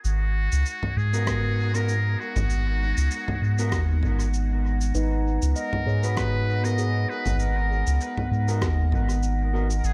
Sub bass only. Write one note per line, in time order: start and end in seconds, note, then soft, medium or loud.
0.04 0.49 G#1 loud
0.52 0.64 C#2 loud
0.97 2.16 G#2 medium
2.36 2.94 G#1 medium
2.97 3.09 C#2 loud
3.42 3.74 G#2 medium
3.72 4.05 D#2 loud
4.03 4.92 G#1 loud
4.95 5.39 G#1 loud
5.42 5.54 C#2 loud
5.86 7.06 G#2 medium
7.26 7.84 G#1 medium
7.87 7.99 C#2 loud
8.31 8.63 G#2 medium
8.62 8.94 D#2 loud
8.92 9.81 G#1 loud
9.84 9.93 G#1 medium